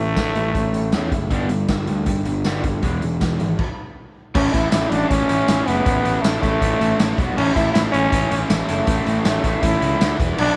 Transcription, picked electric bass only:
Already playing: A1
0.17 A1
0.35 A1
0.55 A1
0.93 E2
1.12 F#1
1.31 G1
1.50 G1
1.69 G1
1.89 D2
2.07 G1
2.27 G1
2.46 G1
2.64 G1
2.83 E1
3.03 E1
3.21 E1
3.41 G#1
4.35 A1
4.55 A1
4.74 A1
4.92 A1
5.11 A1
5.30 A1
5.49 A1
5.68 F#1
5.86 A1
6.06 A1
6.25 A1
6.43 A1
6.62 A1
6.81 A1
7.00 A1
7.19 B1
7.38 A1
7.56 A1
7.75 A1
7.94 A1
8.12 A1
8.32 A1
8.50 A1
8.69 F#1
8.88 A1
9.07 A1
9.26 A1
9.45 A1
9.63 A1
9.82 C#2
10.02 D2
10.20 E1
10.39 B1

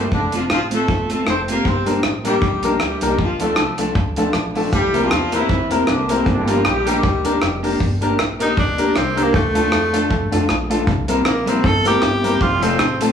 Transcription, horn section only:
0.14 D3 A3 D4
0.36 F3 D4 F4
0.51 F3 C4 F4
0.73 A3 F4 A4
1.11 A3 F4 A4
1.28 C4 A4 C5
1.49 A#3 G4 A#4
1.66 C4 G4 C5
2.26 G3 D#4 G4
2.82 G3 D4 G4
3.04 G3 D#4 G4
3.21 F3 D4 F4
3.41 A3 F4 A4
4.74 G3 E4 G4
5.03 F3 D4 F4
5.33 E3 C4 E4
5.88 D3 A#3 D4
6.11 A3 C4
6.27 D3 A#3 D4
6.49 F3 D4 F4
6.66 G3 D4 G4
6.87 G3 D#4 G4

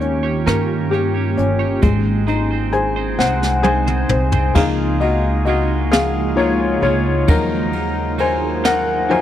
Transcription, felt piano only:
Already playing: D#3 A#3
0.01 C#4
0.46 A#4
0.91 G4
1.38 C#4
1.82 G#3
2.27 D#4
2.73 G#4 C5 G#5
3.19 C5 F#5
3.63 G#4 C5 G#5
4.10 C5
4.54 A#3 D#4 F4 G#4 F5
5.00 F#4 D#5
5.45 F#4 D#5
5.92 G#4 F5
6.36 F3 A#3 D#4 F4 C#5
6.83 F4 C#5
7.28 F3 F#3 D#4 A#4
8.20 C5 G#5
8.65 A#4 F#5
9.10 F3 F#3 D#4 C5 G#5

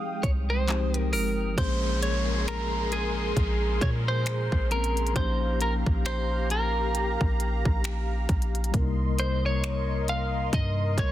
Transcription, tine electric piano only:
Already playing: F3 G#3 C4 D#4 G4
0.67 F3 G#3 C4 D#4 G4
1.55 F3 G#3 A#3
1.59 C#4 G#4
4.71 F3 A#3 C4 C#4 A#4
5.14 F3 A#3 C#4
5.18 D#4 G4
8.72 C3 G3 A#3
8.76 C#4 A#4
8.82 D#4

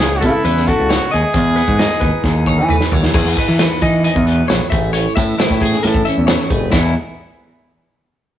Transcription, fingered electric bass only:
Already playing: C#2
0.23 C#3
0.45 E2
0.80 C#2
1.14 D#2
1.35 E2
1.68 G#2
2.01 D#2
2.24 D#2
2.58 E3
2.92 D#2
3.14 E2
3.25 E2
3.48 E3
3.82 E3
4.15 E2
4.51 A#1
4.72 A1
5.17 A2
5.50 A2
5.85 A2
6.18 E2
6.50 F1
6.73 E2

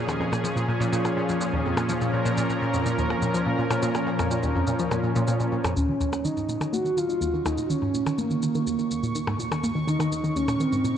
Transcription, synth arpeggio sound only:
0.07 D#2
0.20 F2
0.32 A#2
0.44 F3
0.56 A#2
0.68 A#2
0.80 A#2
0.93 A#2
1.05 A#2
1.17 A#2
1.29 F2
1.41 A#2
1.53 D#2
1.65 F2
1.77 A#2
1.89 F3
2.01 A#2
2.14 A#2
2.25 A#2
2.38 A#2
2.50 A#2
2.62 A#2
2.74 F2
2.86 A#2
2.98 D#2
3.11 F2
3.22 A#2
3.34 F3
3.46 A#2
3.59 A#2
3.71 A#2
3.83 A#2
3.95 A#2
4.07 A#2
4.19 F2
4.31 A#2
4.43 D#2
4.55 F2
4.68 A#2
4.79 F3
4.91 A#2
5.03 A#2
5.16 A#2
5.28 A#2
5.40 A#2
5.52 A#2
5.64 F2
5.76 D#2
5.89 D#3
6.00 D#2
6.12 A#2
6.25 D#3
6.37 G#2
6.49 A#2
6.61 D#3
6.73 A#3
6.85 D#3
6.97 D#3
7.09 D#3
7.21 D#2
7.34 D#3
7.45 D#2
7.57 A#2
7.70 D#3
7.82 G#2
7.94 A#2
8.06 D#3
8.18 A#3
8.31 D#3
8.43 D#3
8.55 D#3
8.67 D#2
8.79 D#3
8.91 D#2
9.03 A#2
9.15 D#3
9.27 G#2
9.39 A#2
9.51 D#3
9.64 A#3
9.75 D#3
9.88 D#3
10.00 D#3
10.12 D#2
10.24 D#3
10.36 D#2
10.48 A#2
10.60 D#3
10.72 G#2
10.84 A#2

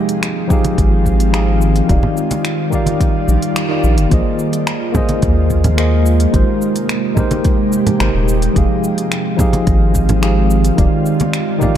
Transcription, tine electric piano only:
Already playing: F3 D#4 G4 G#4 F5
0.48 F3 D#4 G4 G#4
0.53 F5
1.32 F3 D#4 G4 G#4 F5
1.87 D#3 D#4 G4 D5
1.92 F5
2.70 D#3 D#4 G4 D5
2.75 F5
3.69 D#3 D#4 G4 D5 F5
4.09 A#3 F4 G#4 C5
4.14 D#5
4.92 A#3 F4 G#4 C5
4.97 D#5
5.77 A#3 F4 G#4 C5 D#5
6.31 G#3 D#4 G4 A#4
6.36 C5
7.15 G#3 D#4 G4 A#4
7.20 C5
7.99 G#3 D#4 G4 A#4 C5
8.53 F3 D#4 G4 G#4
8.58 F5
9.37 F3 D#4 G4 G#4
9.42 F5
10.21 F3 D#4 G4 G#4 F5
10.76 D#3 D#4 G4 D5
10.81 F5
11.59 D#3 D#4 G4 D5
11.64 F5

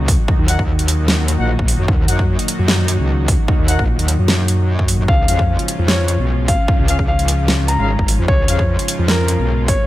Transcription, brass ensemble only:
0.48 D#4 A#4 F#5
1.39 D#4 A#4 F#5
2.08 D#4 A#4 F#5
3.68 D#4 A#4 F#5
5.28 C#4 G#4 F5
6.88 C#4 G#4 F5
7.79 C#4 G#4 F5
8.48 C#4 G#4 F5

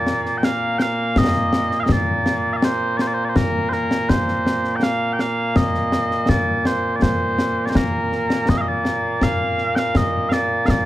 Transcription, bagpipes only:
Already playing: A#2 A#3 D5
0.38 G5
0.44 F5
0.78 F5 G5
1.18 D#5
1.80 D#5 F5
1.92 D5
2.53 D5 F5
2.65 C5
2.97 D5
3.02 C5
3.07 D5
3.14 C5
3.25 D5
3.29 C5
3.36 A#4
3.69 A#4 C5
4.09 C5
4.76 G5
4.83 F5
5.13 G5
5.20 F5
5.57 D#5
6.29 D5
6.67 C5
6.96 D5
7.02 C5
7.66 C5 D5
7.76 A#4
8.49 D#5
8.58 D#5 F5
8.68 D5
9.23 F5
9.75 F5 G5
9.97 D#5
10.29 D5 F5
10.66 F5
10.70 D5

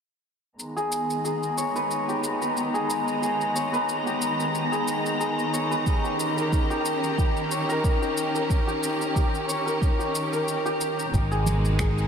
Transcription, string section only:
0.59 D#3 G#3 B3 A#5
5.86 C#4 G4
11.13 B2 G#3 D#4

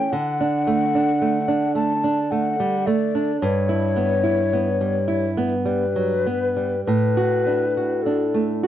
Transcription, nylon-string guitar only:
Already playing: C#4
0.12 D3
0.41 D4
0.67 A3
0.95 D4
1.21 A3
1.48 D4
1.75 A3
2.04 D4
2.32 A3
2.60 G3
2.87 A3
3.15 D4
3.42 G2
3.69 E4
3.96 B3
4.23 E4
4.53 B3
4.81 G3
5.08 E4
5.37 B3
5.65 G3
5.96 F#3
6.26 B3
6.57 G3
6.87 A2
7.17 F#4
7.47 D4
7.77 F#4
8.06 D4
8.34 A3
8.63 F#4

